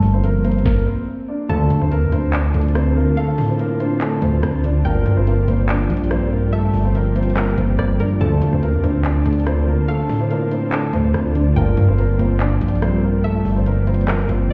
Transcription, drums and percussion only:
0.02 open hi-hat
0.24 closed hi-hat
0.45 closed hi-hat
0.52 closed hi-hat
0.59 closed hi-hat
0.65 kick, snare, closed hi-hat
0.73 closed hi-hat
0.80 closed hi-hat
1.49 closed hi-hat
1.70 closed hi-hat
1.92 closed hi-hat
2.12 closed hi-hat
2.33 clap, closed hi-hat
2.54 closed hi-hat
2.61 closed hi-hat
2.68 closed hi-hat
2.75 cross-stick, closed hi-hat
3.17 closed hi-hat
3.38 open hi-hat
3.59 closed hi-hat
3.80 closed hi-hat
4.01 clap, closed hi-hat
4.22 closed hi-hat
4.43 cross-stick, closed hi-hat
4.64 closed hi-hat
4.85 closed hi-hat
5.06 closed hi-hat
5.27 closed hi-hat
5.48 closed hi-hat
5.69 clap, closed hi-hat
5.90 closed hi-hat
5.97 closed hi-hat
6.04 closed hi-hat
6.11 cross-stick, closed hi-hat
6.53 closed hi-hat
6.74 open hi-hat
6.95 closed hi-hat
7.16 closed hi-hat
7.23 closed hi-hat
7.30 closed hi-hat
7.37 cross-stick, clap, closed hi-hat
7.44 closed hi-hat
7.51 closed hi-hat
7.58 closed hi-hat
7.79 cross-stick, closed hi-hat
8.00 closed hi-hat
8.21 closed hi-hat
8.42 closed hi-hat
8.63 closed hi-hat
8.84 closed hi-hat
9.05 clap, closed hi-hat
9.26 closed hi-hat
9.33 closed hi-hat
9.40 closed hi-hat
9.47 cross-stick, closed hi-hat
9.89 closed hi-hat
10.09 open hi-hat
10.31 closed hi-hat
10.51 closed hi-hat
10.72 clap, closed hi-hat
10.93 closed hi-hat
11.14 cross-stick, closed hi-hat
11.35 closed hi-hat
11.56 closed hi-hat
11.77 closed hi-hat
11.98 closed hi-hat
12.19 closed hi-hat
12.40 clap, closed hi-hat
12.61 closed hi-hat
12.68 closed hi-hat
12.75 closed hi-hat
12.82 cross-stick, closed hi-hat
13.24 closed hi-hat
13.45 open hi-hat
13.66 closed hi-hat
13.87 closed hi-hat
13.94 closed hi-hat
14.01 closed hi-hat
14.08 cross-stick, clap, closed hi-hat
14.15 closed hi-hat
14.22 closed hi-hat
14.29 closed hi-hat

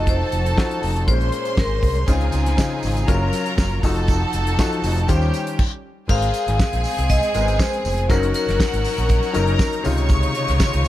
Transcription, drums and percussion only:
0.07 kick, closed hi-hat
0.32 closed hi-hat
0.46 closed hi-hat
0.58 kick, snare
0.71 closed hi-hat
0.83 open hi-hat
0.96 closed hi-hat
1.08 kick, closed hi-hat
1.21 closed hi-hat
1.32 closed hi-hat
1.45 closed hi-hat
1.57 kick, snare
1.83 kick, open hi-hat
1.95 closed hi-hat
2.08 kick, closed hi-hat, tambourine
2.21 closed hi-hat
2.32 closed hi-hat, tambourine
2.46 snare, closed hi-hat
2.58 kick, snare, tambourine
2.83 open hi-hat, tambourine
2.96 closed hi-hat, tambourine
3.08 kick, closed hi-hat, tambourine
3.33 closed hi-hat, tambourine
3.46 closed hi-hat
3.58 kick, snare, tambourine
3.71 closed hi-hat
3.83 kick, open hi-hat, tambourine
3.96 closed hi-hat, tambourine
4.08 kick, closed hi-hat, tambourine
4.33 closed hi-hat, tambourine
4.47 closed hi-hat
4.59 kick, snare, tambourine
4.72 closed hi-hat
4.84 open hi-hat, tambourine
4.97 closed hi-hat
5.08 kick, closed hi-hat, tambourine
5.22 tambourine
5.34 closed hi-hat, tambourine
5.47 closed hi-hat
5.59 kick, crash
6.09 kick, crash, tambourine
6.22 closed hi-hat
6.34 closed hi-hat, tambourine
6.48 closed hi-hat
6.59 kick, snare, tambourine
6.73 closed hi-hat
6.84 open hi-hat, tambourine
6.98 closed hi-hat
7.09 kick, closed hi-hat, tambourine
7.23 closed hi-hat, tambourine
7.34 closed hi-hat, tambourine
7.48 closed hi-hat, tambourine
7.59 kick, snare, tambourine
7.73 closed hi-hat
7.85 open hi-hat, tambourine
7.98 closed hi-hat
8.10 kick, closed hi-hat, tambourine
8.23 closed hi-hat
8.34 closed hi-hat, tambourine
8.49 snare, closed hi-hat
8.60 kick, snare, tambourine
8.73 closed hi-hat
8.84 open hi-hat, tambourine
8.98 closed hi-hat, tambourine
9.09 kick, closed hi-hat, tambourine
9.23 closed hi-hat, tambourine
9.34 closed hi-hat, tambourine
9.47 closed hi-hat
9.59 kick, snare, tambourine
9.73 closed hi-hat
9.84 open hi-hat, tambourine
9.97 closed hi-hat, tambourine
10.09 kick, closed hi-hat, tambourine
10.23 closed hi-hat
10.34 closed hi-hat, tambourine
10.48 snare, closed hi-hat
10.60 kick, snare, tambourine
10.73 closed hi-hat
10.84 tambourine

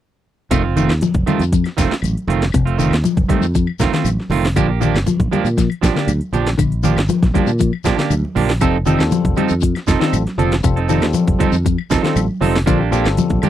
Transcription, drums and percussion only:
0.51 kick, closed hi-hat, high conga, claves, shekere
0.77 closed hi-hat, high conga, low conga, shekere
0.89 snare, claves, shekere
1.01 closed hi-hat, high conga, low conga, shekere
1.14 kick, closed hi-hat, high conga
1.27 closed hi-hat, low conga, claves, shekere
1.39 closed hi-hat, shekere
1.52 kick, closed hi-hat, high conga, shekere
1.64 snare, closed hi-hat, claves
1.78 kick, snare, closed hi-hat, high conga, shekere
1.92 snare, shekere
2.02 closed hi-hat, high conga, claves, shekere
2.17 closed hi-hat
2.28 closed hi-hat, low conga, shekere
2.42 snare, closed hi-hat
2.52 kick, closed hi-hat, claves, shekere
2.67 closed hi-hat
2.79 closed hi-hat, high conga, low conga, shekere
2.91 snare, closed hi-hat, claves, shekere
3.04 closed hi-hat, high conga, shekere
3.17 kick, closed hi-hat, high conga
3.29 kick, closed hi-hat, low conga, claves, shekere
3.42 shekere
3.55 kick, closed hi-hat, high conga, shekere
3.67 claves
3.79 kick, snare, closed hi-hat, high conga, shekere
3.93 snare, closed hi-hat, shekere
4.05 closed hi-hat, high conga, claves, shekere
4.20 snare
4.30 open hi-hat, high conga, low conga, shekere
4.45 snare
4.56 kick, closed hi-hat, high conga, claves, shekere
4.82 closed hi-hat, high conga, low conga, shekere
4.94 snare, claves, shekere
5.07 closed hi-hat, high conga, low conga, shekere
5.20 kick, closed hi-hat, high conga
5.32 closed hi-hat, low conga, claves, shekere
5.45 closed hi-hat, shekere
5.58 kick, snare, closed hi-hat, shekere
5.70 closed hi-hat, claves
5.83 kick, snare, closed hi-hat, high conga, shekere
5.96 snare, shekere
6.08 closed hi-hat, high conga, claves, shekere
6.21 closed hi-hat
6.33 closed hi-hat, low conga, shekere
6.46 snare, closed hi-hat
6.59 kick, closed hi-hat, claves, shekere
6.72 closed hi-hat
6.84 closed hi-hat, high conga, low conga, shekere
6.97 snare, closed hi-hat, claves, shekere
7.08 closed hi-hat, high conga, shekere
7.22 kick, snare, closed hi-hat, high conga
7.34 kick, closed hi-hat, low conga, claves, shekere
7.47 shekere
7.59 kick, closed hi-hat, high conga, shekere
7.73 claves
7.84 kick, snare, closed hi-hat, high conga, shekere
7.98 snare, closed hi-hat, shekere
8.10 closed hi-hat, high conga, claves, shekere
8.25 high conga
8.36 open hi-hat, high conga, low conga, shekere
8.50 snare
8.61 kick, closed hi-hat, claves, shekere
8.86 closed hi-hat, high conga, low conga, shekere
8.99 snare, claves, shekere
9.11 closed hi-hat, high conga, low conga, shekere
9.25 kick, closed hi-hat, high conga
9.36 closed hi-hat, low conga, claves, shekere
9.49 closed hi-hat, shekere
9.61 kick, closed hi-hat, shekere
9.75 snare, closed hi-hat, claves
9.87 kick, snare, closed hi-hat, high conga, shekere
10.01 snare, shekere
10.13 closed hi-hat, high conga, claves, shekere
10.27 snare, closed hi-hat
10.39 closed hi-hat, low conga, shekere
10.52 snare, closed hi-hat
10.63 kick, closed hi-hat, high conga, claves, shekere
10.77 closed hi-hat
10.89 snare, closed hi-hat, high conga, shekere
11.02 snare, closed hi-hat, claves, shekere
11.13 closed hi-hat, high conga, shekere
11.28 kick, closed hi-hat, high conga
11.40 kick, closed hi-hat, low conga, claves, shekere
11.52 shekere
11.66 kick, closed hi-hat, high conga, shekere
11.78 claves
11.91 kick, snare, closed hi-hat, high conga, shekere
12.04 snare, closed hi-hat, shekere
12.16 closed hi-hat, high conga, claves, shekere
12.42 open hi-hat, high conga, low conga, shekere
12.56 snare
12.66 kick, closed hi-hat, claves, shekere
12.93 snare, closed hi-hat, high conga, shekere
13.04 snare, claves, shekere
13.17 closed hi-hat, high conga, low conga, shekere
13.30 kick, closed hi-hat, high conga
13.42 closed hi-hat, low conga, claves, shekere

